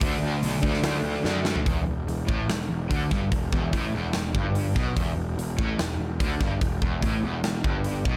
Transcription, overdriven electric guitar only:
0, 0, Header, 1, 2, 480
1, 0, Start_track
1, 0, Tempo, 412371
1, 20, Time_signature, 4, 2, 24, 8
1, 9506, End_track
2, 0, Start_track
2, 0, Title_t, "Overdriven electric guitar"
2, 0, Program_c, 0, 29
2, 9, Note_on_c, 0, 50, 90
2, 28, Note_on_c, 0, 57, 98
2, 37, Note_on_c, 0, 62, 97
2, 704, Note_off_c, 0, 62, 0
2, 718, Note_off_c, 0, 50, 0
2, 718, Note_on_c, 0, 62, 86
2, 722, Note_off_c, 0, 57, 0
2, 736, Note_on_c, 0, 57, 83
2, 745, Note_on_c, 0, 50, 69
2, 1424, Note_off_c, 0, 50, 0
2, 1432, Note_off_c, 0, 62, 0
2, 1434, Note_off_c, 0, 57, 0
2, 1438, Note_on_c, 0, 50, 78
2, 1448, Note_on_c, 0, 57, 83
2, 1463, Note_on_c, 0, 62, 84
2, 1912, Note_off_c, 0, 50, 0
2, 1917, Note_off_c, 0, 57, 0
2, 1923, Note_on_c, 0, 40, 102
2, 1925, Note_off_c, 0, 62, 0
2, 2157, Note_off_c, 0, 40, 0
2, 2171, Note_on_c, 0, 40, 72
2, 2365, Note_off_c, 0, 40, 0
2, 2420, Note_on_c, 0, 40, 69
2, 2610, Note_off_c, 0, 40, 0
2, 2636, Note_on_c, 0, 45, 95
2, 2879, Note_off_c, 0, 45, 0
2, 2884, Note_on_c, 0, 40, 71
2, 3082, Note_off_c, 0, 40, 0
2, 3127, Note_on_c, 0, 40, 73
2, 3323, Note_off_c, 0, 40, 0
2, 3367, Note_on_c, 0, 50, 97
2, 3604, Note_off_c, 0, 50, 0
2, 3613, Note_on_c, 0, 43, 97
2, 3847, Note_off_c, 0, 43, 0
2, 3861, Note_on_c, 0, 40, 72
2, 4051, Note_off_c, 0, 40, 0
2, 4117, Note_on_c, 0, 40, 97
2, 4339, Note_off_c, 0, 40, 0
2, 4344, Note_on_c, 0, 45, 96
2, 4573, Note_off_c, 0, 45, 0
2, 4590, Note_on_c, 0, 40, 96
2, 4814, Note_off_c, 0, 40, 0
2, 4828, Note_on_c, 0, 40, 70
2, 5014, Note_off_c, 0, 40, 0
2, 5066, Note_on_c, 0, 43, 92
2, 5521, Note_on_c, 0, 47, 101
2, 5535, Note_off_c, 0, 43, 0
2, 5762, Note_off_c, 0, 47, 0
2, 5769, Note_on_c, 0, 40, 105
2, 5992, Note_off_c, 0, 40, 0
2, 6006, Note_on_c, 0, 40, 77
2, 6204, Note_off_c, 0, 40, 0
2, 6235, Note_on_c, 0, 40, 68
2, 6438, Note_off_c, 0, 40, 0
2, 6495, Note_on_c, 0, 45, 100
2, 6729, Note_off_c, 0, 45, 0
2, 6736, Note_on_c, 0, 40, 69
2, 6929, Note_off_c, 0, 40, 0
2, 6988, Note_on_c, 0, 40, 68
2, 7175, Note_off_c, 0, 40, 0
2, 7229, Note_on_c, 0, 50, 98
2, 7456, Note_off_c, 0, 50, 0
2, 7461, Note_on_c, 0, 43, 98
2, 7693, Note_off_c, 0, 43, 0
2, 7704, Note_on_c, 0, 40, 66
2, 7893, Note_off_c, 0, 40, 0
2, 7946, Note_on_c, 0, 40, 102
2, 8174, Note_on_c, 0, 45, 96
2, 8175, Note_off_c, 0, 40, 0
2, 8409, Note_off_c, 0, 45, 0
2, 8424, Note_on_c, 0, 40, 101
2, 8648, Note_off_c, 0, 40, 0
2, 8662, Note_on_c, 0, 40, 67
2, 8852, Note_off_c, 0, 40, 0
2, 8901, Note_on_c, 0, 43, 92
2, 9373, Note_off_c, 0, 43, 0
2, 9378, Note_on_c, 0, 47, 95
2, 9506, Note_off_c, 0, 47, 0
2, 9506, End_track
0, 0, End_of_file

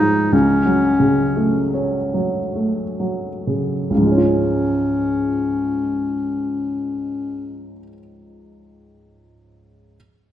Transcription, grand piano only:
0, 0, Header, 1, 2, 480
1, 0, Start_track
1, 0, Key_signature, -5, "major"
1, 0, Tempo, 1008403
1, 154, Time_signature, 3, 2, 24, 8
1, 645, Tempo, 1195219
1, 1125, Tempo, 1348315
1, 1605, Tempo, 1271186
1, 4030, End_track
2, 0, Start_track
2, 0, Title_t, "Grand piano"
2, 0, Program_c, 0, 0
2, 0, Control_c, 0, 64, 127
2, 0, Note_on_c, 0, 37, 36
2, 0, Note_on_c, 0, 44, 30
2, 0, Note_on_c, 0, 53, 24
2, 0, Note_on_c, 0, 56, 33
2, 0, Note_on_c, 0, 61, 34
2, 3, Note_off_c, 0, 44, 0
2, 3, Note_on_c, 0, 44, 34
2, 94, Note_off_c, 0, 53, 0
2, 135, Note_off_c, 0, 37, 0
2, 153, Note_off_c, 0, 44, 0
2, 154, Note_on_c, 0, 37, 38
2, 164, Control_c, 0, 64, 0
2, 166, Note_off_c, 0, 56, 0
2, 167, Note_off_c, 0, 61, 0
2, 281, Control_c, 0, 64, 127
2, 310, Note_on_c, 0, 54, 32
2, 474, Note_on_c, 0, 49, 28
2, 575, Note_off_c, 0, 54, 0
2, 647, Note_on_c, 0, 57, 29
2, 736, Note_off_c, 0, 49, 0
2, 799, Note_on_c, 0, 61, 30
2, 894, Note_off_c, 0, 57, 0
2, 960, Note_on_c, 0, 54, 25
2, 1058, Note_off_c, 0, 61, 0
2, 1127, Note_on_c, 0, 57, 27
2, 1218, Note_off_c, 0, 54, 0
2, 1284, Note_on_c, 0, 54, 22
2, 1383, Note_off_c, 0, 57, 0
2, 1453, Note_on_c, 0, 49, 24
2, 1545, Note_off_c, 0, 54, 0
2, 1590, Note_off_c, 0, 37, 0
2, 1606, Note_off_c, 0, 49, 0
2, 1606, Note_on_c, 0, 37, 29
2, 1617, Control_c, 0, 64, 0
2, 1627, Note_on_c, 0, 44, 24
2, 1647, Note_on_c, 0, 53, 25
2, 1668, Note_on_c, 0, 56, 24
2, 1686, Note_on_c, 0, 61, 22
2, 1707, Control_c, 0, 64, 127
2, 1708, Note_on_c, 0, 65, 22
2, 3046, Note_off_c, 0, 37, 0
2, 3067, Note_off_c, 0, 44, 0
2, 3087, Note_off_c, 0, 53, 0
2, 3108, Note_off_c, 0, 56, 0
2, 3126, Note_off_c, 0, 61, 0
2, 3148, Note_off_c, 0, 65, 0
2, 3894, Control_c, 0, 64, 0
2, 4030, End_track
0, 0, End_of_file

